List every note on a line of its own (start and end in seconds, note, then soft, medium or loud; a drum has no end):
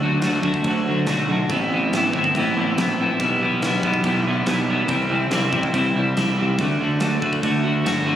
0.01 0.21 D2 medium
0.01 0.21 D3 medium
0.01 0.22 F#3 medium
0.01 0.23 A3 loud
0.01 0.22 D4 medium
0.01 0.23 F#4 loud
0.21 0.42 D2 medium
0.21 0.41 D3 medium
0.21 0.42 F#3 medium
0.21 0.44 A3 medium
0.21 0.43 D4 medium
0.21 0.44 F#4 medium
0.21 snare loud
0.21 crash medium
0.42 0.63 D2 medium
0.42 0.65 D3 medium
0.42 0.66 F#3 medium
0.42 0.66 A3 medium
0.42 0.66 D4 medium
0.42 0.67 F#4 loud
0.42 kick medium
0.54 kick medium
0.64 1.05 D2 loud
0.64 0.86 D3 loud
0.64 0.86 F#3 loud
0.64 0.87 A3 loud
0.64 0.87 D4 loud
0.64 0.88 F#4 loud
0.64 kick loud
0.64 crash medium
0.87 1.07 D3 medium
0.87 1.07 F#3 medium
0.87 1.08 A3 medium
0.87 1.08 D4 medium
0.87 1.09 F#4 medium
1.06 1.48 B1 medium
1.06 1.27 D3 medium
1.06 1.27 F#3 medium
1.06 1.28 A3 medium
1.06 1.28 D4 loud
1.06 1.28 F#4 loud
1.06 snare loud
1.06 crash medium
1.28 1.48 D3 medium
1.28 1.48 F#3 medium
1.28 1.49 A3 medium
1.28 1.49 D4 medium
1.28 1.49 F#4 loud
1.49 1.90 A1 medium
1.49 1.71 A2 medium
1.49 1.73 E3 loud
1.49 1.73 B3 loud
1.49 1.72 C4 medium
1.49 1.73 E4 loud
1.49 kick loud
1.49 crash medium
1.72 1.92 A2 medium
1.72 1.94 E3 medium
1.72 1.94 B3 loud
1.72 1.93 C4 medium
1.72 1.94 E4 loud
1.92 2.12 A1 loud
1.92 2.12 A2 medium
1.92 2.14 E3 medium
1.92 2.15 B3 loud
1.92 2.13 C4 medium
1.92 2.16 E4 loud
1.92 snare loud
1.92 crash medium
2.13 2.34 G1 medium
2.13 2.35 A2 medium
2.13 2.36 E3 loud
2.13 2.36 B3 loud
2.13 2.36 C4 loud
2.13 2.38 E4 medium
2.13 kick medium
2.24 kick medium
2.35 2.55 A1 loud
2.35 2.56 A2 loud
2.35 2.57 E3 loud
2.35 2.57 B3 loud
2.35 2.57 C4 loud
2.35 2.58 E4 loud
2.35 kick loud
2.35 crash medium
2.56 2.77 A1 medium
2.56 2.75 A2 medium
2.56 2.77 E3 medium
2.56 2.77 B3 medium
2.56 2.76 C4 medium
2.56 2.78 E4 medium
2.77 3.20 A#1 loud
2.77 2.97 A2 medium
2.77 3.00 E3 medium
2.77 2.99 B3 medium
2.77 2.99 C4 medium
2.77 3.01 E4 loud
2.77 snare loud
2.77 crash medium
2.99 3.18 A2 medium
2.99 3.20 E3 medium
2.99 3.19 B3 loud
2.99 3.19 C4 loud
2.99 3.21 E4 medium
3.20 3.40 B1 loud
3.20 3.40 B2 medium
3.20 3.41 E3 medium
3.20 3.41 G3 medium
3.20 3.41 B3 loud
3.20 3.42 E4 loud
3.20 kick loud
3.20 crash medium
3.41 3.60 B1 medium
3.41 3.62 B2 medium
3.41 3.63 E3 medium
3.41 3.64 G3 medium
3.41 3.63 B3 medium
3.41 3.65 E4 medium
3.61 3.82 B1 medium
3.61 3.82 B2 medium
3.61 3.83 E3 medium
3.61 3.84 G3 medium
3.61 3.84 B3 medium
3.61 snare loud
3.61 crash medium
3.65 3.85 E4 medium
3.83 4.03 B1 medium
3.83 4.03 B2 medium
3.83 4.03 E3 medium
3.83 4.04 G3 medium
3.83 4.04 B3 medium
3.83 4.05 E4 loud
3.83 kick medium
3.94 kick medium
4.04 4.45 B1 loud
4.04 4.25 B2 medium
4.04 4.26 E3 loud
4.04 4.25 G3 medium
4.04 4.26 B3 loud
4.04 4.26 E4 loud
4.04 kick loud
4.04 crash medium
4.26 4.46 B2 medium
4.26 4.46 E3 medium
4.26 4.46 G3 medium
4.26 4.47 B3 medium
4.26 4.47 E4 medium
4.46 4.87 B1 medium
4.46 4.67 B2 medium
4.46 4.67 E3 medium
4.46 4.68 G3 medium
4.46 4.68 B3 medium
4.46 4.69 E4 medium
4.46 snare loud
4.46 crash medium
4.68 4.87 B2 medium
4.68 4.87 E3 medium
4.68 4.87 G3 medium
4.68 4.88 B3 loud
4.68 4.88 E4 medium
4.88 5.30 C2 medium
4.88 5.08 C3 medium
4.88 5.08 E3 medium
4.88 5.09 G3 loud
4.88 5.10 C4 medium
4.88 5.10 E4 loud
4.88 kick loud
4.88 crash medium
5.09 5.29 C3 medium
5.09 5.30 E3 medium
5.09 5.31 G3 medium
5.09 5.31 C4 loud
5.09 5.31 E4 medium
5.31 5.51 C2 medium
5.31 5.51 C3 medium
5.31 5.52 E3 medium
5.31 5.52 G3 medium
5.31 5.52 C4 medium
5.31 5.53 E4 medium
5.31 snare loud
5.31 crash medium
5.52 5.73 A1 medium
5.52 5.71 C3 medium
5.52 5.72 E3 medium
5.52 5.73 G3 medium
5.52 5.74 C4 medium
5.52 5.74 E4 medium
5.52 kick medium
5.63 kick medium
5.72 5.94 C2 medium
5.72 5.94 C3 loud
5.72 5.94 E3 medium
5.72 5.95 G3 medium
5.72 5.95 C4 medium
5.72 5.95 E4 loud
5.72 kick loud
5.72 crash medium
5.95 6.16 C2 medium
5.95 6.14 C3 medium
5.95 6.15 E3 medium
5.95 6.16 G3 medium
5.95 6.16 C4 loud
5.95 6.16 E4 medium
6.15 6.58 C2 medium
6.15 6.37 C3 medium
6.15 6.38 E3 medium
6.15 6.38 G3 medium
6.15 6.38 C4 medium
6.15 6.39 E4 loud
6.15 snare loud
6.15 crash medium
6.38 6.58 C3 loud
6.38 6.58 E3 medium
6.38 6.58 G3 medium
6.38 6.58 C4 loud
6.38 6.59 E4 loud
6.58 6.79 D2 loud
6.58 6.79 D3 medium
6.58 6.80 A3 loud
6.58 6.80 D4 loud
6.58 6.80 F#4 loud
6.58 kick loud
6.58 crash medium
6.80 7.01 D2 medium
6.80 7.00 D3 medium
6.80 7.01 A3 medium
6.80 7.00 D4 medium
6.80 7.01 F#4 medium
7.00 7.22 D2 medium
7.00 7.20 D3 medium
7.00 7.21 A3 medium
7.00 7.20 D4 loud
7.00 7.22 F#4 loud
7.00 snare loud
7.00 crash medium
7.21 7.43 D2 medium
7.21 7.41 D3 medium
7.21 7.42 A3 loud
7.21 7.42 D4 medium
7.21 7.43 F#4 medium
7.21 kick medium
7.33 kick medium
7.42 7.84 D2 medium
7.42 7.62 D3 loud
7.42 7.62 A3 medium
7.42 7.63 D4 loud
7.42 7.63 F#4 loud
7.42 kick loud
7.42 crash medium
7.63 7.82 D3 medium
7.63 7.83 A3 medium
7.63 7.83 D4 medium
7.63 7.83 F#4 medium
7.83 8.16 G1 medium
7.83 8.03 D3 medium
7.83 8.04 A3 medium
7.83 8.05 D4 medium
7.83 8.06 F#4 medium
7.83 snare loud
7.83 crash medium
8.05 8.16 D3 medium
8.05 8.16 A3 loud
8.05 8.16 D4 medium
8.05 8.16 F#4 medium